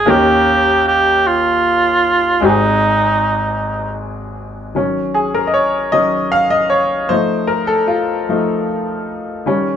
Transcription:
Already playing: G#4
0.05 D#2 D#3 A#3 C#4 D#4 G4 A#4
0.11 G4
0.88 G4
1.27 F4
2.40 G#1 G#2 G#3 C4 D#4 F#4 G4
2.45 D#4 G#4
4.75 D#3 F#3 C#4
5.14 G#4
5.34 A#4
5.47 D#5
5.54 C#5
5.92 D#3 F#3 C#4 D#5
6.32 F5
6.50 D#5
6.70 C#5
7.09 F3 A3 D#4 C5
7.47 A#4
7.67 A4
7.87 F4
8.29 F3 A3 D#4
9.46 D#3 G3 C#4

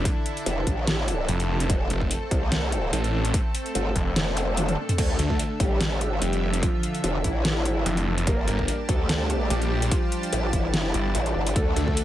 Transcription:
Already playing: D3 D4 E4 A4
0.05 kick, closed hi-hat
0.26 closed hi-hat
0.37 closed hi-hat
0.46 E1, closed hi-hat
0.67 A1, kick, closed hi-hat
0.87 snare, closed hi-hat
1.08 closed hi-hat
1.28 F1, closed hi-hat
1.40 closed hi-hat
1.60 closed hi-hat
1.70 F1 A3 C4, kick, closed hi-hat
1.90 F1, closed hi-hat
2.01 kick
2.11 closed hi-hat
2.31 C2, kick, closed hi-hat
2.52 snare, closed hi-hat
2.72 closed hi-hat
2.93 A1, closed hi-hat
3.04 closed hi-hat
3.25 closed hi-hat
3.34 kick, closed hi-hat
3.55 closed hi-hat
3.66 closed hi-hat
3.75 G1, closed hi-hat
3.96 F1, kick, closed hi-hat
4.16 F1, snare, closed hi-hat, swell
4.37 closed hi-hat, zap
4.57 closed hi-hat, high tom
4.69 closed hi-hat, high tom
4.89 closed hi-hat, mid tom
4.98 D2 D3 A3 D4 A4 E5, kick, closed hi-hat, crash
5.19 D2, closed hi-hat
5.30 kick
5.39 closed hi-hat
5.60 A1 G3 G4, kick, closed hi-hat
5.81 snare, closed hi-hat
6.01 G#1, closed hi-hat
6.22 F1 G3 G4, closed hi-hat
6.33 closed hi-hat
6.53 closed hi-hat
6.63 F3 F4, kick, closed hi-hat
6.83 closed hi-hat
6.95 closed hi-hat
7.04 E1, closed hi-hat
7.24 A1 E3 E4, kick, closed hi-hat
7.45 snare, closed hi-hat
7.65 G#1, closed hi-hat
7.86 F1, closed hi-hat
7.97 closed hi-hat
8.18 closed hi-hat
8.27 G1 G3 A#3 G4 A#4 A5, kick, closed hi-hat
8.48 G1, closed hi-hat
8.59 kick
8.68 closed hi-hat
8.89 D2 A3 A4, kick, closed hi-hat
9.09 snare, closed hi-hat
9.30 closed hi-hat
9.50 A#1 G3 G4, closed hi-hat
9.62 closed hi-hat
9.82 closed hi-hat
9.91 F3 F4, kick, closed hi-hat
10.12 closed hi-hat
10.23 closed hi-hat
10.33 A1, closed hi-hat
10.53 G1 E3 E4, kick, closed hi-hat
10.74 snare, closed hi-hat
10.94 G1, closed hi-hat
11.15 A1, closed hi-hat
11.26 closed hi-hat
11.35 G1
11.47 closed hi-hat
11.56 D2 D3 A3 A4 E5, kick, closed hi-hat
11.76 D2, closed hi-hat
11.88 kick
11.97 closed hi-hat

